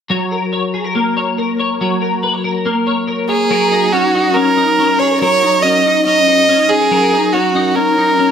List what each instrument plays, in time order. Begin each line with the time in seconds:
0.10 clean electric guitar F#3 C#5
0.32 clean electric guitar A#4
0.53 clean electric guitar C#5
0.74 clean electric guitar G#4
0.84 clean electric guitar A#4
0.95 clean electric guitar A#3
1.17 clean electric guitar C#5
1.38 clean electric guitar A#4
1.59 clean electric guitar C#5
1.81 clean electric guitar F#3 C#5
2.02 clean electric guitar A#4
2.23 clean electric guitar B4
2.34 clean electric guitar C#5
2.44 clean electric guitar A#4
2.66 clean electric guitar A#3
2.87 clean electric guitar C#5
3.08 clean electric guitar A#4
3.29 violin G#4, clean electric guitar C#5
3.50 clean electric guitar F#3 A#4
3.71 clean electric guitar D#4
3.92 clean electric guitar C#4, violin F#4
4.15 clean electric guitar D#4
4.34 clean electric guitar C#4, violin A#4
4.57 clean electric guitar D#4
4.79 clean electric guitar C#4
4.99 clean electric guitar G#4, violin C#5
5.11 clean electric guitar A#4
5.20 clean electric guitar F#3 A#4, violin C#5
5.43 clean electric guitar D#4
5.62 clean electric guitar C#4, violin D#5
5.86 clean electric guitar D#4
6.06 clean electric guitar C#4, violin D#5
6.28 clean electric guitar D#4
6.49 clean electric guitar C#4
6.69 violin G#4, clean electric guitar G#4
6.81 clean electric guitar A#4
6.91 clean electric guitar F#3 A#4
7.13 clean electric guitar D#4
7.32 clean electric guitar C#4, violin F#4
7.55 clean electric guitar D#4
7.75 clean electric guitar C#4, violin A#4
7.98 clean electric guitar D#4
8.19 clean electric guitar C#4